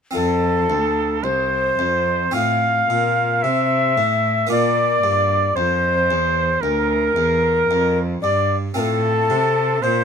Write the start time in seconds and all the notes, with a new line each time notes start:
0.11 F2 C4 F4 A4
0.15 F2
0.69 D2
1.23 C2 C5
1.78 F2
2.31 A2 C4 F4 F5
2.89 A#2
3.42 C3 E5
3.97 A2
4.47 A#2 A#3 F4 D5
4.51 D5
5.03 G2
5.56 F2 C5
6.10 E2
6.62 D2 A#4
7.16 E2
7.70 F2
8.22 G2 D5
8.74 A2 C4 F4 A4 A#4
8.80 A4
9.30 C3
9.82 A#2 C5